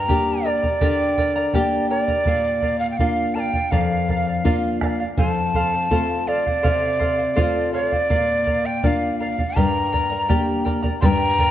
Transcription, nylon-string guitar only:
0.08 A#3 D4 G4
0.81 D3
1.54 A#3 D4 G4
2.27 A#2
2.99 A#3 D4 F4
3.72 F2
4.44 A#3 D4 F4
5.18 F2
5.91 A3 C4 F4
6.64 C3
7.36 A3 C4 F4
8.10 A#2
8.84 A#3 D4 F4
9.57 G2
10.29 A#3 D4 G4
11.03 G2

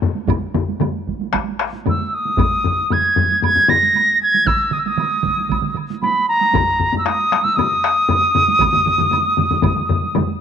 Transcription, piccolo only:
1.89 E6
2.06 E6
2.14 D#6
2.93 G#6
3.43 G#6
3.70 A#6
4.23 G#6
4.47 E6
4.73 D#6
4.79 E6
4.87 D#6
6.02 B5
6.29 A#5
6.98 E6
7.05 D#6
7.44 E6
7.56 D#6

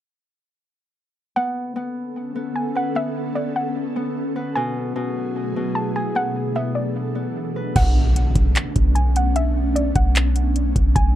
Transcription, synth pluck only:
1.36 F#5
2.56 G#5
2.77 F#5
2.96 E5
3.35 D5
3.56 F#5
4.55 G#5
5.75 A5
5.96 G#5
6.16 F#5
6.56 E5
6.75 D5
7.76 F#5
8.95 G#5
9.16 F#5
9.36 E5
9.76 D5
9.96 F#5
10.96 G#5

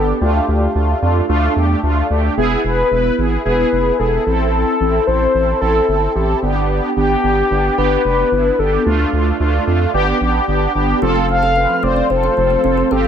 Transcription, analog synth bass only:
Already playing: G1
0.21 D2
0.48 D2
0.75 D2
1.02 F2
1.29 D2
1.56 E2
1.83 D2
2.10 D2
2.37 E1
2.64 E1
2.91 E1
3.18 G#1
3.45 E1
3.72 F1
4.00 E1
4.27 A1
4.80 A1
5.08 A1
5.35 A1
5.62 A1
5.88 G1
6.15 A1
6.42 G1
6.97 G1
7.24 G1
7.51 G1
7.78 G1
8.05 F1
8.32 G1
8.59 G1
8.86 D2
9.13 D2
9.40 D2
9.67 F2
9.94 G1
10.21 A1
10.48 G1
10.75 G1
11.02 F1
11.83 F1
12.10 F1
12.37 F1
12.64 F1
12.91 G1

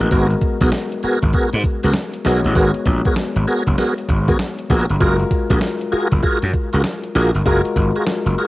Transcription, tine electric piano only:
Already playing: G#3 B3 F#4 A#4
2.25 G#3 B3 F#4 C#5
4.99 G#3 F4 F#4 G#4
5.09 A#4
7.45 G#3 F4 F#4 A#4

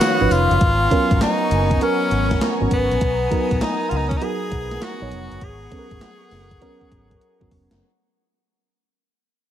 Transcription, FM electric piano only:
Already playing: D#3 F3 C#4 D#4 A#4 B4
0.21 F3 C#4 D#4 B4
0.91 F#3 B3 C#4 A#4
1.81 F#3 B3 C#4 A#4
2.61 F#3 B3 C#4 A#4
3.31 F#3 B3 D#4 A#4
4.21 F#3 B3 D#4 A#4
5.01 F#3 B3 D#4 C#5
5.71 F#3 B3 C#4 A4
5.78 A#4
6.61 F#3 B3 C#4 A#4
7.41 F#3 B3 C#4 A#4

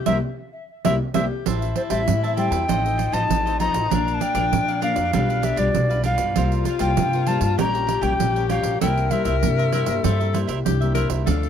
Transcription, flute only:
0.07 E5
0.85 E5
1.14 E5
1.76 C5
1.91 E5
2.38 G5
3.13 A5
3.60 A#5
4.14 A5
4.22 G5
4.83 F5
5.44 E5
5.58 D5
6.05 F5
6.81 G5
7.27 A5
7.60 A#5
8.02 G5
8.50 F5
8.82 G5
9.11 E5
9.26 E5

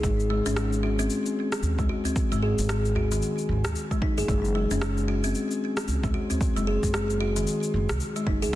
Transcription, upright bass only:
0.03 G#1
0.46 G#1
1.63 D#2
1.79 C#2
2.32 G#1
2.58 G#1
3.49 G#1
3.65 D#2
4.18 F#1
4.28 F#1
4.71 F#1
5.88 C#2
6.03 A#1
6.57 F#1
6.83 F#1
7.74 F#1
7.89 C#2
8.27 F#1
8.43 C#2

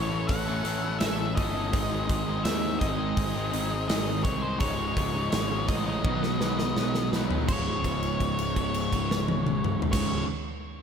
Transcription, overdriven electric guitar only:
Already playing: A2 E3 A3 C#4
0.10 A3 C#4 E4 A4
0.46 A3 C#4 E4 A4
0.63 A3 C#4 E4 A4
0.82 A3 C#4 E4 A4
0.99 A2 E3 A3 C#4 E4 A4
1.35 A3 C#4 E4 A4
1.71 G#2 D#3 G#3 C4 D#4 G#4
2.07 G#3 C4 D#4 G#4
2.26 G#3 C4 D#4 G#4
2.42 G#2 D#3 G#3 C4 D#4 G#4
2.80 G#3 C4 D#4 G#4
2.98 G#3 C4 D#4 G#4
3.33 G#3 C4 D#4 G#4
3.51 G#3 C4 D#4 G#4
3.70 G#3 C4 D#4 G#4
3.87 G#2 D#3 G#3 C4 D#4 G#4
4.24 G#3 C4 D#4 G#4
4.58 C#2 G#2 C#3 G#3 D#4
4.95 G#2 C#3 G#3 D#4
5.13 C#3 G#3 D#4
5.32 C#2 G#2 C#3 G#3 D#4
5.67 G#2 C#3 G#3 D#4
5.87 C#3 G#3 D#4
6.03 B2 F#3 B3 D#4 F#4 B4
6.21 B3 D#4 F#4 B4
6.39 B3 D#4 F#4 B4
6.58 B3 D#4 F#4 B4
6.76 B2 F#3 B3 D#4 F#4 B4
7.12 B3 D#4 F#4 B4
7.48 C#2 G#2 C#3
9.91 C#2 G#2
9.95 C#3

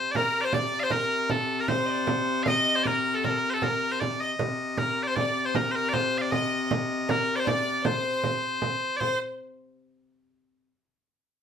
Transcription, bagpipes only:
Already playing: C5
0.11 D5
0.16 A#4
0.41 C5 D5
0.54 D5
0.80 C5 F5
0.91 A#4
1.31 A4
1.60 A#4
1.69 C5
2.43 F5
2.48 D#5
2.76 C5
2.83 A#4 D5
3.15 A4
3.25 A#4
3.50 A4 C5
3.63 A#4
3.92 C5
4.00 D5
4.21 D#5
4.78 A#4
5.03 D5
5.07 C5
5.15 D5
5.45 C5
5.56 A#4
5.72 C5
5.76 A#4
5.89 D5
5.93 C5
6.18 D5 F5
6.32 D#5
7.10 A#4
7.36 C5 D5
7.48 D5
7.86 C5
8.97 C5 D5

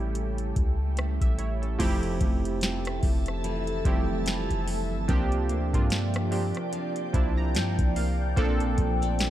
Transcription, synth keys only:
Already playing: G3 A3 C#4 E4 G4 A4
1.22 G4 E5
1.38 E4 C#5
1.62 C#4 A4
1.79 F3 A3 C4 E4 G4
3.85 F3 G3 C4 E4 G4
3.92 A3
5.08 F3 A#3 C4 D4 G4
5.73 F3 A#3 C4 D4 F4
6.31 F3 A#3 C4 D4 G4
7.13 F3 A#3 C4 D4 E4 A5
7.37 A#5
7.55 G5
7.96 F5
8.36 F3 A#3 C4 D4 A4

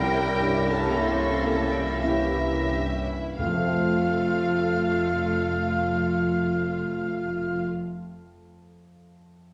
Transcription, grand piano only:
Already playing: C2
0.39 G2
0.90 A#3 C#4 E4
1.44 A#3
2.03 A#3 C#4 E4
2.71 G2
3.39 F2
3.46 F3
3.53 A3
3.60 C4
3.67 F4
3.74 C5

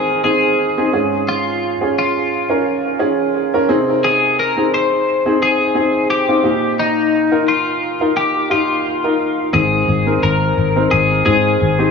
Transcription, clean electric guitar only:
Already playing: G#4
0.24 G#4
1.29 F4
1.99 F4
4.04 G#4
4.39 A#4
4.74 C5
5.43 G#4
6.10 G4
6.80 D#4
7.48 F4
8.17 G4
8.51 F4
9.54 G#4
10.23 A#4
10.91 G#4
11.26 G#4

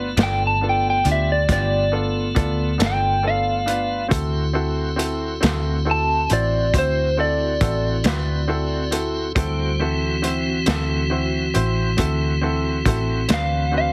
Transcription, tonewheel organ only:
Already playing: A3 B3 F4
4.11 C4 E4 F#4
9.37 G3 F#4 C5
9.80 E3 C4 F#4

